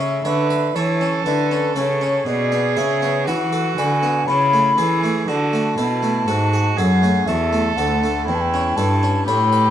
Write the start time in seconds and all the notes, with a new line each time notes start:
Already playing: C#3 E5
0.00 C#4
0.25 D3 B4 C#5
0.50 B4
0.75 E3 A4 C#5
1.01 C#4
1.25 D3 E4 B4
1.51 C#4
1.76 C#3 A4 C#5
2.01 C#4
2.26 B2 G#4 D5
2.52 B3
2.77 C#3 G#4 E5
3.02 B3
3.27 E3 F#4 B4 F#5
3.53 A4
3.77 D3 B4 G#5
4.03 B3
4.27 C#3 E4 B5
4.53 A3
4.78 E3 G#4 A4
5.04 A3
5.28 D3 F#4 A5
5.53 A3
5.78 B2 E4 A4
6.03 A3
6.27 G#2 F#4 A4
6.53 G#4
6.77 F#2 G#4 A4 F#5
7.03 A3
7.26 E2 F#4 A4 E5
7.53 A3
7.77 D2 A4 F#5
8.03 A3
8.27 E2 E4 G5
8.35 A5
8.41 G5
8.54 C#4
8.76 G2 A4 A5
9.03 C#4
9.27 A2 G4 C#5 B5
9.53 B4